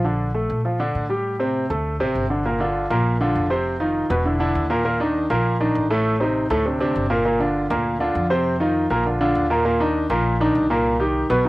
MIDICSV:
0, 0, Header, 1, 3, 480
1, 0, Start_track
1, 0, Tempo, 300000
1, 75, Time_signature, 4, 2, 24, 8
1, 18379, End_track
2, 0, Start_track
2, 0, Title_t, "Grand piano"
2, 0, Program_c, 0, 0
2, 69, Note_on_c, 0, 50, 78
2, 75, Note_on_c, 0, 62, 69
2, 467, Note_off_c, 0, 50, 0
2, 470, Note_off_c, 0, 62, 0
2, 547, Note_on_c, 0, 57, 62
2, 553, Note_on_c, 0, 69, 60
2, 946, Note_off_c, 0, 57, 0
2, 949, Note_off_c, 0, 69, 0
2, 1035, Note_on_c, 0, 53, 65
2, 1043, Note_on_c, 0, 65, 62
2, 1233, Note_off_c, 0, 53, 0
2, 1238, Note_off_c, 0, 65, 0
2, 1269, Note_on_c, 0, 50, 96
2, 1274, Note_on_c, 0, 62, 86
2, 1668, Note_off_c, 0, 50, 0
2, 1671, Note_off_c, 0, 62, 0
2, 1747, Note_on_c, 0, 55, 71
2, 1755, Note_on_c, 0, 67, 72
2, 2147, Note_off_c, 0, 55, 0
2, 2152, Note_off_c, 0, 67, 0
2, 2232, Note_on_c, 0, 48, 77
2, 2240, Note_on_c, 0, 60, 82
2, 2630, Note_off_c, 0, 48, 0
2, 2635, Note_off_c, 0, 60, 0
2, 2719, Note_on_c, 0, 57, 68
2, 2724, Note_on_c, 0, 69, 68
2, 3115, Note_off_c, 0, 57, 0
2, 3118, Note_off_c, 0, 69, 0
2, 3203, Note_on_c, 0, 48, 96
2, 3210, Note_on_c, 0, 60, 85
2, 3597, Note_off_c, 0, 48, 0
2, 3602, Note_off_c, 0, 60, 0
2, 3681, Note_on_c, 0, 50, 72
2, 3685, Note_on_c, 0, 62, 63
2, 3880, Note_off_c, 0, 50, 0
2, 3882, Note_off_c, 0, 62, 0
2, 3924, Note_on_c, 0, 46, 71
2, 3929, Note_on_c, 0, 58, 72
2, 3934, Note_on_c, 0, 70, 72
2, 4122, Note_off_c, 0, 46, 0
2, 4125, Note_off_c, 0, 58, 0
2, 4128, Note_off_c, 0, 70, 0
2, 4161, Note_on_c, 0, 50, 79
2, 4166, Note_on_c, 0, 62, 77
2, 4171, Note_on_c, 0, 65, 76
2, 4557, Note_off_c, 0, 50, 0
2, 4560, Note_off_c, 0, 62, 0
2, 4563, Note_off_c, 0, 65, 0
2, 4644, Note_on_c, 0, 46, 88
2, 4649, Note_on_c, 0, 58, 82
2, 4655, Note_on_c, 0, 70, 81
2, 5039, Note_off_c, 0, 46, 0
2, 5042, Note_off_c, 0, 58, 0
2, 5045, Note_off_c, 0, 70, 0
2, 5130, Note_on_c, 0, 50, 89
2, 5134, Note_on_c, 0, 62, 80
2, 5140, Note_on_c, 0, 65, 84
2, 5523, Note_off_c, 0, 50, 0
2, 5525, Note_off_c, 0, 62, 0
2, 5529, Note_off_c, 0, 65, 0
2, 5605, Note_on_c, 0, 48, 82
2, 5610, Note_on_c, 0, 60, 82
2, 5616, Note_on_c, 0, 72, 81
2, 6000, Note_off_c, 0, 48, 0
2, 6003, Note_off_c, 0, 60, 0
2, 6006, Note_off_c, 0, 72, 0
2, 6084, Note_on_c, 0, 51, 80
2, 6085, Note_on_c, 0, 63, 77
2, 6090, Note_on_c, 0, 65, 70
2, 6479, Note_off_c, 0, 51, 0
2, 6480, Note_off_c, 0, 63, 0
2, 6483, Note_off_c, 0, 65, 0
2, 6559, Note_on_c, 0, 47, 78
2, 6566, Note_on_c, 0, 59, 75
2, 6570, Note_on_c, 0, 71, 83
2, 6759, Note_off_c, 0, 47, 0
2, 6764, Note_off_c, 0, 59, 0
2, 6766, Note_off_c, 0, 71, 0
2, 6807, Note_on_c, 0, 50, 72
2, 6808, Note_on_c, 0, 62, 66
2, 6816, Note_on_c, 0, 64, 66
2, 7004, Note_off_c, 0, 50, 0
2, 7005, Note_off_c, 0, 62, 0
2, 7009, Note_off_c, 0, 64, 0
2, 7037, Note_on_c, 0, 50, 86
2, 7044, Note_on_c, 0, 62, 82
2, 7048, Note_on_c, 0, 64, 86
2, 7435, Note_off_c, 0, 50, 0
2, 7439, Note_off_c, 0, 62, 0
2, 7441, Note_off_c, 0, 64, 0
2, 7519, Note_on_c, 0, 46, 85
2, 7521, Note_on_c, 0, 58, 80
2, 7529, Note_on_c, 0, 70, 90
2, 7719, Note_off_c, 0, 46, 0
2, 7721, Note_off_c, 0, 58, 0
2, 7725, Note_off_c, 0, 70, 0
2, 7754, Note_on_c, 0, 46, 80
2, 7759, Note_on_c, 0, 58, 77
2, 7764, Note_on_c, 0, 70, 84
2, 7957, Note_off_c, 0, 46, 0
2, 7959, Note_off_c, 0, 58, 0
2, 7962, Note_off_c, 0, 70, 0
2, 8003, Note_on_c, 0, 51, 80
2, 8005, Note_on_c, 0, 62, 80
2, 8014, Note_on_c, 0, 63, 78
2, 8399, Note_off_c, 0, 51, 0
2, 8400, Note_off_c, 0, 62, 0
2, 8405, Note_off_c, 0, 63, 0
2, 8481, Note_on_c, 0, 46, 85
2, 8489, Note_on_c, 0, 58, 87
2, 8491, Note_on_c, 0, 70, 85
2, 8877, Note_off_c, 0, 46, 0
2, 8882, Note_off_c, 0, 58, 0
2, 8884, Note_off_c, 0, 70, 0
2, 8966, Note_on_c, 0, 51, 79
2, 8970, Note_on_c, 0, 62, 80
2, 8973, Note_on_c, 0, 63, 76
2, 9360, Note_off_c, 0, 51, 0
2, 9363, Note_off_c, 0, 62, 0
2, 9364, Note_off_c, 0, 63, 0
2, 9448, Note_on_c, 0, 45, 91
2, 9449, Note_on_c, 0, 57, 85
2, 9454, Note_on_c, 0, 69, 83
2, 9841, Note_off_c, 0, 45, 0
2, 9842, Note_off_c, 0, 57, 0
2, 9845, Note_off_c, 0, 69, 0
2, 9923, Note_on_c, 0, 48, 76
2, 9928, Note_on_c, 0, 60, 76
2, 9933, Note_on_c, 0, 63, 74
2, 10318, Note_off_c, 0, 48, 0
2, 10321, Note_off_c, 0, 60, 0
2, 10324, Note_off_c, 0, 63, 0
2, 10404, Note_on_c, 0, 45, 86
2, 10411, Note_on_c, 0, 57, 80
2, 10413, Note_on_c, 0, 69, 85
2, 10602, Note_off_c, 0, 45, 0
2, 10606, Note_off_c, 0, 57, 0
2, 10607, Note_off_c, 0, 69, 0
2, 10645, Note_on_c, 0, 48, 65
2, 10649, Note_on_c, 0, 60, 62
2, 10654, Note_on_c, 0, 62, 65
2, 10843, Note_off_c, 0, 48, 0
2, 10845, Note_off_c, 0, 60, 0
2, 10848, Note_off_c, 0, 62, 0
2, 10887, Note_on_c, 0, 48, 79
2, 10888, Note_on_c, 0, 60, 83
2, 10893, Note_on_c, 0, 62, 86
2, 11280, Note_off_c, 0, 48, 0
2, 11281, Note_off_c, 0, 60, 0
2, 11284, Note_off_c, 0, 62, 0
2, 11356, Note_on_c, 0, 46, 83
2, 11359, Note_on_c, 0, 58, 84
2, 11367, Note_on_c, 0, 70, 81
2, 11557, Note_off_c, 0, 46, 0
2, 11559, Note_off_c, 0, 58, 0
2, 11564, Note_off_c, 0, 70, 0
2, 11602, Note_on_c, 0, 46, 78
2, 11605, Note_on_c, 0, 58, 74
2, 11612, Note_on_c, 0, 70, 67
2, 11801, Note_off_c, 0, 46, 0
2, 11803, Note_off_c, 0, 58, 0
2, 11807, Note_off_c, 0, 70, 0
2, 11836, Note_on_c, 0, 50, 70
2, 11844, Note_on_c, 0, 62, 78
2, 11850, Note_on_c, 0, 65, 79
2, 12233, Note_off_c, 0, 50, 0
2, 12238, Note_off_c, 0, 62, 0
2, 12242, Note_off_c, 0, 65, 0
2, 12325, Note_on_c, 0, 46, 79
2, 12328, Note_on_c, 0, 58, 82
2, 12334, Note_on_c, 0, 70, 75
2, 12719, Note_off_c, 0, 46, 0
2, 12720, Note_off_c, 0, 58, 0
2, 12724, Note_off_c, 0, 70, 0
2, 12800, Note_on_c, 0, 50, 76
2, 12805, Note_on_c, 0, 62, 85
2, 12809, Note_on_c, 0, 65, 81
2, 13196, Note_off_c, 0, 50, 0
2, 13198, Note_off_c, 0, 62, 0
2, 13201, Note_off_c, 0, 65, 0
2, 13281, Note_on_c, 0, 48, 83
2, 13283, Note_on_c, 0, 60, 83
2, 13288, Note_on_c, 0, 72, 86
2, 13676, Note_off_c, 0, 48, 0
2, 13677, Note_off_c, 0, 60, 0
2, 13680, Note_off_c, 0, 72, 0
2, 13760, Note_on_c, 0, 51, 83
2, 13768, Note_on_c, 0, 63, 81
2, 13771, Note_on_c, 0, 65, 78
2, 14155, Note_off_c, 0, 51, 0
2, 14160, Note_off_c, 0, 63, 0
2, 14162, Note_off_c, 0, 65, 0
2, 14244, Note_on_c, 0, 46, 82
2, 14249, Note_on_c, 0, 58, 75
2, 14251, Note_on_c, 0, 70, 81
2, 14440, Note_off_c, 0, 46, 0
2, 14443, Note_off_c, 0, 58, 0
2, 14445, Note_off_c, 0, 70, 0
2, 14491, Note_on_c, 0, 50, 64
2, 14492, Note_on_c, 0, 62, 63
2, 14499, Note_on_c, 0, 65, 68
2, 14685, Note_off_c, 0, 50, 0
2, 14685, Note_off_c, 0, 62, 0
2, 14689, Note_off_c, 0, 65, 0
2, 14729, Note_on_c, 0, 50, 86
2, 14732, Note_on_c, 0, 62, 83
2, 14738, Note_on_c, 0, 65, 85
2, 15120, Note_off_c, 0, 50, 0
2, 15122, Note_off_c, 0, 62, 0
2, 15125, Note_off_c, 0, 65, 0
2, 15200, Note_on_c, 0, 46, 88
2, 15206, Note_on_c, 0, 58, 81
2, 15210, Note_on_c, 0, 70, 81
2, 15397, Note_off_c, 0, 46, 0
2, 15401, Note_off_c, 0, 58, 0
2, 15404, Note_off_c, 0, 70, 0
2, 15436, Note_on_c, 0, 46, 82
2, 15440, Note_on_c, 0, 58, 83
2, 15446, Note_on_c, 0, 70, 78
2, 15635, Note_off_c, 0, 46, 0
2, 15637, Note_off_c, 0, 58, 0
2, 15641, Note_off_c, 0, 70, 0
2, 15678, Note_on_c, 0, 51, 80
2, 15682, Note_on_c, 0, 62, 83
2, 15687, Note_on_c, 0, 63, 87
2, 16073, Note_off_c, 0, 51, 0
2, 16075, Note_off_c, 0, 62, 0
2, 16078, Note_off_c, 0, 63, 0
2, 16158, Note_on_c, 0, 46, 93
2, 16164, Note_on_c, 0, 58, 78
2, 16170, Note_on_c, 0, 70, 78
2, 16552, Note_off_c, 0, 46, 0
2, 16556, Note_off_c, 0, 58, 0
2, 16560, Note_off_c, 0, 70, 0
2, 16644, Note_on_c, 0, 51, 86
2, 16653, Note_on_c, 0, 62, 92
2, 16656, Note_on_c, 0, 63, 89
2, 17036, Note_off_c, 0, 51, 0
2, 17041, Note_off_c, 0, 62, 0
2, 17043, Note_off_c, 0, 63, 0
2, 17119, Note_on_c, 0, 46, 88
2, 17123, Note_on_c, 0, 58, 88
2, 17124, Note_on_c, 0, 70, 81
2, 17512, Note_off_c, 0, 46, 0
2, 17515, Note_off_c, 0, 58, 0
2, 17515, Note_off_c, 0, 70, 0
2, 17591, Note_on_c, 0, 51, 83
2, 17597, Note_on_c, 0, 63, 71
2, 17603, Note_on_c, 0, 67, 82
2, 17988, Note_off_c, 0, 51, 0
2, 17991, Note_off_c, 0, 63, 0
2, 17995, Note_off_c, 0, 67, 0
2, 18075, Note_on_c, 0, 47, 81
2, 18079, Note_on_c, 0, 59, 88
2, 18088, Note_on_c, 0, 71, 85
2, 18273, Note_off_c, 0, 47, 0
2, 18276, Note_off_c, 0, 59, 0
2, 18281, Note_off_c, 0, 71, 0
2, 18317, Note_on_c, 0, 51, 65
2, 18320, Note_on_c, 0, 63, 69
2, 18330, Note_on_c, 0, 66, 63
2, 18379, Note_off_c, 0, 51, 0
2, 18379, Note_off_c, 0, 63, 0
2, 18379, Note_off_c, 0, 66, 0
2, 18379, End_track
3, 0, Start_track
3, 0, Title_t, "Upright bass"
3, 0, Program_c, 1, 32
3, 0, Note_on_c, 1, 34, 92
3, 708, Note_off_c, 1, 34, 0
3, 791, Note_on_c, 1, 46, 90
3, 1466, Note_off_c, 1, 46, 0
3, 1516, Note_on_c, 1, 45, 82
3, 2633, Note_off_c, 1, 45, 0
3, 2720, Note_on_c, 1, 38, 92
3, 3168, Note_off_c, 1, 38, 0
3, 3205, Note_on_c, 1, 33, 70
3, 3428, Note_off_c, 1, 33, 0
3, 3442, Note_on_c, 1, 31, 88
3, 4557, Note_off_c, 1, 31, 0
3, 4647, Note_on_c, 1, 34, 92
3, 5317, Note_off_c, 1, 34, 0
3, 5366, Note_on_c, 1, 29, 85
3, 6479, Note_off_c, 1, 29, 0
3, 6562, Note_on_c, 1, 28, 106
3, 7234, Note_off_c, 1, 28, 0
3, 7283, Note_on_c, 1, 39, 100
3, 8398, Note_off_c, 1, 39, 0
3, 8480, Note_on_c, 1, 34, 97
3, 9153, Note_off_c, 1, 34, 0
3, 9204, Note_on_c, 1, 33, 93
3, 10318, Note_off_c, 1, 33, 0
3, 10403, Note_on_c, 1, 38, 97
3, 11074, Note_off_c, 1, 38, 0
3, 11127, Note_on_c, 1, 31, 90
3, 12238, Note_off_c, 1, 31, 0
3, 12324, Note_on_c, 1, 38, 101
3, 12994, Note_off_c, 1, 38, 0
3, 13042, Note_on_c, 1, 41, 94
3, 14154, Note_off_c, 1, 41, 0
3, 14243, Note_on_c, 1, 34, 87
3, 14912, Note_off_c, 1, 34, 0
3, 14962, Note_on_c, 1, 39, 88
3, 16073, Note_off_c, 1, 39, 0
3, 16154, Note_on_c, 1, 34, 99
3, 16826, Note_off_c, 1, 34, 0
3, 16880, Note_on_c, 1, 36, 88
3, 17991, Note_off_c, 1, 36, 0
3, 18078, Note_on_c, 1, 35, 101
3, 18379, Note_off_c, 1, 35, 0
3, 18379, End_track
0, 0, End_of_file